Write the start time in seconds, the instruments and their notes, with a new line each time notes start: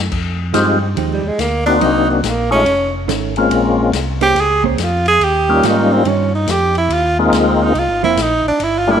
Already playing: tonewheel organ F#2
0.12 tonewheel organ F2, kick, crash
0.54 tonewheel organ G2 G#3 C4 D#4 F4 G4, hollow-body jazz guitar F3 G#3 D#4 G4, snare, hi-hat pedal, ride
0.96 tonewheel organ D#2, hollow-body jazz guitar F3 G#3 D#4 G4, ride
1.13 tenor saxophone G3
1.23 tonewheel organ D#2
1.27 tenor saxophone G#3
1.38 tonewheel organ D2, tenor saxophone A#3, snare, hi-hat pedal, ride
1.66 tonewheel organ A#3 C4 D4 D#4 F#4, tenor saxophone D4, ride
1.81 tonewheel organ C2, hollow-body jazz guitar F#3 A#3 D#4, tenor saxophone D#4, ride
2.11 tenor saxophone F#3
2.23 tonewheel organ A#1, snare, hi-hat pedal, ride
2.28 tenor saxophone A#3
2.51 tonewheel organ G#3 A3 C#4 D#4 F4, tenor saxophone C#4
2.66 tonewheel organ F1, ride
3.08 tonewheel organ G#1, hollow-body jazz guitar D#3 A3 C#4, snare, hi-hat pedal, ride
3.36 tonewheel organ G#3 A#3 C4 C#4 F4, ride
3.50 tonewheel organ A#1, ride
3.92 tonewheel organ C2, snare, hi-hat pedal, ride
4.21 hollow-body jazz guitar A#3 C#4 G#4 C5, tenor saxophone G4, ride
4.35 tonewheel organ C#2, snare, ride
4.41 tenor saxophone G#4
4.64 hollow-body jazz guitar A#3 C#4 G#4 C5, tenor saxophone C4, kick
4.78 tonewheel organ F2, snare, hi-hat pedal, ride
4.83 tenor saxophone F4
5.06 tenor saxophone G#4, ride
5.20 tonewheel organ D#2, ride
5.24 tenor saxophone G4
5.49 tonewheel organ G3 A#3 C#4 D#4 F4
5.63 tonewheel organ G#2, hollow-body jazz guitar D#3 G3 C#4 F4, tenor saxophone D#4, snare, hi-hat pedal, ride
5.92 tenor saxophone C4
6.05 tonewheel organ G2, hollow-body jazz guitar D#3 G3 C#4 F4, tenor saxophone C#4, ride
6.35 tenor saxophone D#4
6.47 tonewheel organ F2, tenor saxophone G4, snare, hi-hat pedal, ride
6.75 tenor saxophone E4, ride
6.89 tonewheel organ D#2, ride
6.93 tenor saxophone F4
7.19 tonewheel organ G#3 A#3 C4 D#4 F4, tenor saxophone G#3
7.32 tonewheel organ D2, snare, hi-hat pedal, ride
7.38 tenor saxophone C4
7.63 tenor saxophone D#4
7.74 tonewheel organ C2, ride
7.79 tenor saxophone F4
7.89 tonewheel organ G#1
8.03 tonewheel organ F1, hollow-body jazz guitar F3 A#3 C4, tenor saxophone E4
8.17 tonewheel organ A#1, snare, hi-hat pedal, ride
8.22 tenor saxophone D#4
8.44 tonewheel organ A#1
8.48 tenor saxophone D4
8.60 tonewheel organ G1, ride
8.64 tenor saxophone E4
8.78 tenor saxophone F4
8.87 tonewheel organ G3 A3 A#3 D4 F4
8.92 tenor saxophone E4